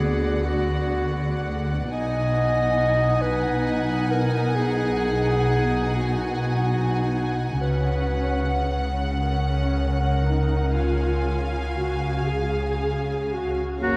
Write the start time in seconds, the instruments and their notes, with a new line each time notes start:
Already playing: double bass section D2, cello section D3, viola section B3, violin section D5 F#5
0.00 clarinet G#4
0.45 clarinet F#4
1.91 double bass section B1, cello section B2, viola section D#4, clarinet D#5, violin section F#5 G#5
3.22 clarinet B4
4.10 clarinet A#4
4.55 clarinet G#4
5.96 clarinet F#4
7.61 double bass section C#2, cello section C#3, viola section C#4, clarinet B4, violin section F#5
9.20 viola section C#4, clarinet A#4
10.24 viola section D#4
10.75 viola section F4, violin section F5 G#5
11.78 viola section F#4
12.29 viola section G#4
13.32 viola section F#4
13.81 double bass section F#1, cello section F#2, french horn section A#3 F#4, viola section C#4, violin section F#4 A#5, oboe F#4